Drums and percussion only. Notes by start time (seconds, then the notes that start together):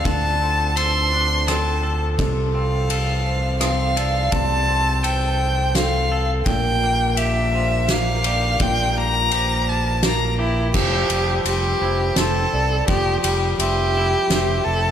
0.05 kick, ride
0.77 ride
1.48 cross-stick, ride
2.19 kick, ride
2.90 ride
3.61 cross-stick, ride
3.97 ride
4.32 kick, ride
5.04 ride
5.75 snare, ride
6.46 kick, ride
7.17 ride
7.88 snare, ride
8.24 ride
8.60 kick, ride
9.31 ride
10.03 snare, ride
10.74 kick, crash
11.10 ride
11.45 ride
12.16 snare, ride
12.88 kick, ride
13.24 ride
13.60 ride
14.30 snare, ride